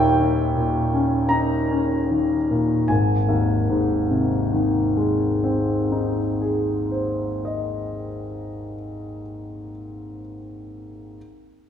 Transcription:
Already playing: D#2 A#2 D#3 C#4 D#4 E5 G5 G#5 A#5 B5 C#6 D#6 E6
0.21 D#3
0.56 A#2
0.93 C#4
1.29 D#4 A#5
1.70 C#4
2.11 D#3
2.51 A#2
2.88 G#1 G#5
3.28 D#2
3.69 G#2
4.11 C3
4.53 D#3
4.97 G#3
5.43 C4
5.92 D#4
6.42 G#4
6.92 C5
7.45 D#5

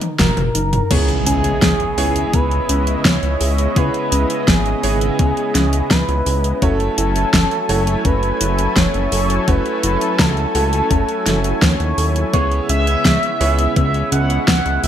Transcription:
Already playing: D#4
0.01 closed hi-hat, high tom
0.19 F#1 F#4 A#4, kick, snare, closed hi-hat, mid tom
0.37 F#1, closed hi-hat, mid tom
0.55 F#1 D#4, closed hi-hat
0.73 closed hi-hat, mid tom
0.91 C#2 C#3 G#3 B3 C#4 E4 G#4 C#5 D#5, kick, closed hi-hat, crash, impact
1.09 closed hi-hat
1.26 C#2 C#4 G#4, closed hi-hat
1.44 closed hi-hat
1.62 C#2 B3, kick, snare, closed hi-hat
1.80 closed hi-hat
1.98 C#2 B3 C#4 E4 G#4 C#5, open hi-hat
2.16 closed hi-hat
2.33 C#2 B3 B4, kick, closed hi-hat
2.51 closed hi-hat
2.69 C#2 C#4, closed hi-hat
2.87 closed hi-hat
3.05 C#2 B3 C#5, kick, snare, closed hi-hat
3.23 C#2, closed hi-hat
3.41 C#2 G#4, open hi-hat
3.58 closed hi-hat
3.76 C#2 B3 C#4 E4 G#4 B4 C#5, kick, closed hi-hat
3.94 closed hi-hat
4.12 C#2 C#4, closed hi-hat
4.30 closed hi-hat
4.48 G#1 B3 G#4, kick, snare, closed hi-hat
4.66 closed hi-hat
4.83 G#1 B3 C#4 E4 G#4 C#5, open hi-hat
5.01 closed hi-hat
5.19 C#2 B3, kick, closed hi-hat
5.37 closed hi-hat
5.55 C#2 C#4, snare, closed hi-hat
5.73 closed hi-hat
5.91 C#2 B3 B4, kick, snare, closed hi-hat
6.08 C#2, closed hi-hat
6.26 C#2 G#4, open hi-hat
6.44 closed hi-hat
6.62 F#1 F#3 A3 C#4 E4 F#4 A4 C#5 G#5, kick, closed hi-hat
6.80 closed hi-hat
6.98 F#1 E4 A4, closed hi-hat
7.16 closed hi-hat
7.34 F#1 C#4, kick, snare, closed hi-hat
7.51 closed hi-hat
7.69 F#1 A3 C#4 E4 F#4 A4 C#5, open hi-hat
7.87 closed hi-hat
8.05 F#1 C#4 B4, kick, closed hi-hat
8.23 closed hi-hat
8.41 F#1 E4, closed hi-hat
8.59 closed hi-hat
8.76 F#1 C#4 C#5, kick, snare, closed hi-hat
8.94 F#1, closed hi-hat
9.12 F#1 A4, open hi-hat
9.30 closed hi-hat
9.48 F#1 A3 C#4 E4 F#4 B4 C#5, kick, closed hi-hat
9.66 closed hi-hat
9.83 F#1 E4, closed hi-hat
10.01 closed hi-hat
10.19 C#2 C#4 A4, kick, snare, closed hi-hat
10.37 closed hi-hat
10.55 C#2 A3 C#4 E4 F#4 A4 C#5, open hi-hat
10.73 closed hi-hat
10.91 F#1 C#4, kick, closed hi-hat
11.09 closed hi-hat
11.26 F#1 E4, snare, closed hi-hat
11.44 closed hi-hat
11.62 D#2 C#4 C#5, kick, snare, closed hi-hat
11.80 D#2, closed hi-hat
11.98 D#2 A4, open hi-hat
12.16 closed hi-hat
12.34 C#2 C#3 G#3 B3 C#4 E4 G#4 C#5 E5, kick, closed hi-hat
12.52 closed hi-hat
12.69 C#2 C#4 E5, closed hi-hat
12.87 closed hi-hat
13.05 C#2 B3, kick, snare, closed hi-hat
13.23 closed hi-hat
13.41 C#2 B3 C#4 E4 G#4 C#5, open hi-hat
13.59 closed hi-hat
13.76 C#2 B3 E5, kick, closed hi-hat
13.94 closed hi-hat
14.12 C#2 C#4 F#5, closed hi-hat
14.30 closed hi-hat
14.48 C#2 B3 F#5, kick, snare, closed hi-hat
14.66 C#2, closed hi-hat
14.83 C#2 G#4 E5, open hi-hat

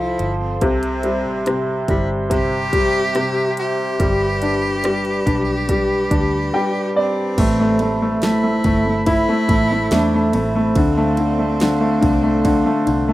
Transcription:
Already playing: C2 F3 A4 C5 A5 C6
0.00 E4
0.19 G1, closed hi-hat
0.41 C4
0.61 C2 C3 C4 G4 E5, kick, closed hi-hat
0.83 closed hi-hat
1.03 G3, closed hi-hat
1.25 A1
1.46 C3, cross-stick, closed hi-hat
1.88 G1 G3 E4, kick, closed hi-hat
2.30 C3 G4, kick, closed hi-hat
2.73 G3, kick, closed hi-hat
3.15 C3, cross-stick, closed hi-hat
3.57 G4, closed hi-hat
4.00 G1 G3 B4 D5 B5, kick, closed hi-hat
4.42 D4, closed hi-hat
4.84 G3, cross-stick, closed hi-hat
5.05 closed hi-hat
5.26 B1 D4, kick, closed hi-hat
5.69 G3, kick, closed hi-hat
6.11 D2 D4, kick, closed hi-hat
6.54 G3 G5
6.96 C4 D5
7.37 A1 A3 A4 C5 E5 B5, kick, crash, ride
7.60 A3
7.79 A3, ride
8.02 A3
8.22 A3 E4, snare, ride
8.43 A3
8.64 G1 A3, kick, ride
8.86 A3
9.06 E4, kick, ride
9.29 A3
9.49 A1 A3, kick, ride
9.71 A3
9.91 E2 A3 D4, snare, ride
10.14 A3
10.33 A1 A3 C4, ride
10.55 A3
10.75 D2 D3 D5 F5 C6, kick, ride
10.97 A3
11.17 D3, ride
11.39 A3
11.60 D3, snare, ride
11.81 A3
12.01 C2 D3, kick, ride
12.23 A3
12.45 D3, kick, ride
12.66 A3
12.86 C2 D3, ride
13.08 A3

